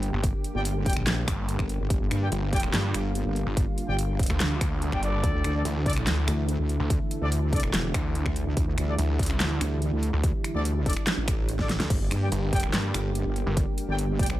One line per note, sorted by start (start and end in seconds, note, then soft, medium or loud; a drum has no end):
0.00 0.12 G1 loud
0.00 11.86 D3 medium
0.00 5.20 G3 medium
0.00 5.20 A#3 medium
0.00 1.87 G4 medium
0.00 closed hi-hat medium
0.13 0.22 G1 loud
0.24 0.32 G1 loud
0.24 kick loud
0.24 closed hi-hat medium
0.44 closed hi-hat medium
0.55 0.95 G1 loud
0.55 0.61 G4 medium
0.55 0.61 D5 medium
0.55 0.61 G5 loud
0.65 closed hi-hat medium
0.86 0.92 G4 medium
0.86 0.92 D5 medium
0.86 0.92 G5 medium
0.86 kick loud
0.86 closed hi-hat medium
0.90 closed hi-hat medium
0.93 1.26 A#1 loud
0.93 finger snap medium
0.93 closed hi-hat medium
1.07 snare loud
1.07 clap loud
1.07 closed hi-hat medium
1.28 1.57 G1 loud
1.28 finger snap medium
1.28 kick loud
1.28 closed hi-hat medium
1.49 closed hi-hat medium
1.59 1.78 G1 loud
1.59 finger snap medium
1.59 kick medium
1.69 closed hi-hat medium
1.80 1.89 G1 loud
1.90 1.99 G1 loud
1.90 5.20 F4 medium
1.90 kick loud
1.90 closed hi-hat medium
2.01 2.09 G1 loud
2.11 2.30 G2 loud
2.11 finger snap medium
2.11 closed hi-hat medium
2.22 2.28 G4 medium
2.22 2.28 D5 medium
2.22 2.28 G5 medium
2.32 2.72 G1 loud
2.32 closed hi-hat medium
2.53 2.59 G4 medium
2.53 2.59 D5 medium
2.53 2.59 G5 loud
2.53 kick loud
2.53 closed hi-hat soft
2.56 closed hi-hat medium
2.60 finger snap soft
2.60 closed hi-hat medium
2.74 2.93 G2 loud
2.74 snare loud
2.74 clap medium
2.74 closed hi-hat medium
2.94 3.24 G1 loud
2.94 finger snap medium
2.94 closed hi-hat medium
3.15 closed hi-hat medium
3.26 3.45 G1 loud
3.36 closed hi-hat medium
3.47 3.55 G1 loud
3.57 3.66 G1 loud
3.57 kick loud
3.57 closed hi-hat medium
3.78 closed hi-hat medium
3.88 4.28 G1 medium
3.88 3.94 G4 medium
3.88 3.94 D5 medium
3.88 3.94 G5 loud
3.99 closed hi-hat medium
4.19 kick loud
4.19 closed hi-hat soft
4.23 closed hi-hat medium
4.26 4.91 D2 loud
4.26 finger snap medium
4.26 closed hi-hat medium
4.40 snare loud
4.40 clap medium
4.40 closed hi-hat medium
4.61 finger snap medium
4.61 kick loud
4.61 closed hi-hat medium
4.82 closed hi-hat medium
4.92 5.22 G1 medium
4.92 5.01 G4 medium
4.92 5.01 D5 medium
4.92 5.01 G5 medium
4.92 finger snap medium
4.92 kick medium
5.03 5.52 D4 medium
5.03 5.52 A4 medium
5.03 5.52 D5 medium
5.03 closed hi-hat medium
5.03 zap medium
5.24 5.32 D2 loud
5.24 11.86 E3 medium
5.24 8.54 A3 medium
5.24 11.86 E4 medium
5.24 kick loud
5.24 closed hi-hat medium
5.34 5.43 D2 loud
5.44 5.64 D2 medium
5.44 finger snap medium
5.44 closed hi-hat medium
5.55 5.61 D4 medium
5.55 5.61 A4 medium
5.55 5.61 D5 medium
5.65 6.05 D2 loud
5.65 closed hi-hat medium
5.86 5.92 D4 medium
5.86 5.92 A4 medium
5.86 5.92 D5 loud
5.86 kick loud
5.86 closed hi-hat soft
5.90 closed hi-hat medium
5.93 finger snap medium
5.93 closed hi-hat medium
6.07 6.26 D2 loud
6.07 snare loud
6.07 clap medium
6.07 closed hi-hat medium
6.28 6.57 D2 loud
6.28 finger snap medium
6.28 closed hi-hat medium
6.49 closed hi-hat medium
6.59 6.78 D2 loud
6.69 closed hi-hat medium
6.80 6.89 D2 loud
6.90 6.99 D2 loud
6.90 kick loud
6.90 closed hi-hat medium
7.11 closed hi-hat medium
7.22 7.62 D2 medium
7.22 7.28 D4 medium
7.22 7.28 A4 medium
7.22 7.28 D5 loud
7.32 closed hi-hat medium
7.53 7.59 D4 medium
7.53 7.59 A4 medium
7.53 7.59 D5 medium
7.53 kick loud
7.53 closed hi-hat soft
7.56 closed hi-hat medium
7.60 7.93 E1 medium
7.60 finger snap medium
7.60 closed hi-hat medium
7.74 snare loud
7.74 clap medium
7.74 closed hi-hat medium
7.94 8.24 D2 loud
7.94 finger snap medium
7.94 kick loud
7.94 closed hi-hat medium
8.15 closed hi-hat medium
8.26 8.45 D2 loud
8.26 finger snap medium
8.26 kick medium
8.36 closed hi-hat medium
8.47 8.55 D2 loud
8.57 8.66 D2 loud
8.57 14.40 G3 medium
8.57 kick loud
8.57 closed hi-hat medium
8.67 8.76 D2 loud
8.78 8.97 D2 loud
8.78 finger snap medium
8.78 closed hi-hat medium
8.88 8.94 D4 medium
8.88 8.94 A4 medium
8.88 8.94 D5 medium
8.99 9.39 D2 loud
8.99 closed hi-hat medium
9.19 kick loud
9.19 closed hi-hat medium
9.23 closed hi-hat medium
9.26 finger snap medium
9.26 closed hi-hat medium
9.40 9.59 D2 loud
9.40 snare loud
9.40 clap medium
9.40 closed hi-hat medium
9.61 9.91 D2 loud
9.61 finger snap medium
9.61 closed hi-hat medium
9.82 closed hi-hat medium
9.92 10.12 D2 loud
10.03 closed hi-hat medium
10.13 10.22 D2 loud
10.24 10.32 D2 loud
10.24 kick loud
10.24 closed hi-hat medium
10.44 finger snap medium
10.44 closed hi-hat medium
10.55 10.95 D2 loud
10.55 10.61 D4 medium
10.55 10.61 A4 medium
10.55 10.61 D5 loud
10.65 closed hi-hat medium
10.86 10.92 D4 medium
10.86 10.92 A4 medium
10.86 10.92 D5 medium
10.86 kick loud
10.86 closed hi-hat medium
10.90 closed hi-hat medium
10.93 finger snap medium
10.93 closed hi-hat medium
11.07 snare loud
11.07 clap medium
11.07 closed hi-hat medium
11.17 11.78 A1 loud
11.28 finger snap medium
11.28 kick loud
11.28 closed hi-hat medium
11.49 closed hi-hat medium
11.59 11.68 D4 medium
11.59 11.68 A4 medium
11.59 11.68 D5 medium
11.59 kick medium
11.59 snare medium
11.69 snare medium
11.69 closed hi-hat medium
11.80 11.89 D2 loud
11.80 snare medium
11.80 closed hi-hat soft
11.90 11.99 G1 loud
11.90 14.40 D3 medium
11.90 14.40 A#3 medium
11.90 14.40 G4 medium
11.90 kick loud
11.90 closed hi-hat medium
11.90 crash medium
12.01 12.09 G1 loud
12.11 12.30 G2 loud
12.11 finger snap medium
12.11 closed hi-hat medium
12.22 12.28 G4 medium
12.22 12.28 D5 medium
12.22 12.28 G5 medium
12.32 12.72 G1 loud
12.32 closed hi-hat medium
12.53 12.59 G4 loud
12.53 12.59 D5 medium
12.53 12.59 G5 loud
12.53 kick loud
12.53 closed hi-hat medium
12.56 closed hi-hat medium
12.60 finger snap soft
12.60 closed hi-hat medium
12.74 12.93 G2 loud
12.74 snare loud
12.74 clap loud
12.74 closed hi-hat medium
12.94 13.24 G1 loud
12.94 finger snap medium
12.94 closed hi-hat medium
13.15 closed hi-hat medium
13.26 13.45 G1 loud
13.36 closed hi-hat medium
13.47 13.55 G1 loud
13.57 13.66 G1 loud
13.57 kick loud
13.57 closed hi-hat medium
13.78 closed hi-hat medium
13.88 14.28 G1 loud
13.88 13.94 G4 medium
13.88 13.94 D5 medium
13.88 13.94 G5 loud
13.99 closed hi-hat medium
14.19 14.26 G4 medium
14.19 14.26 D5 medium
14.19 14.26 G5 medium
14.19 kick loud
14.19 closed hi-hat soft
14.23 closed hi-hat medium
14.26 14.40 A#1 loud
14.26 finger snap soft
14.26 closed hi-hat medium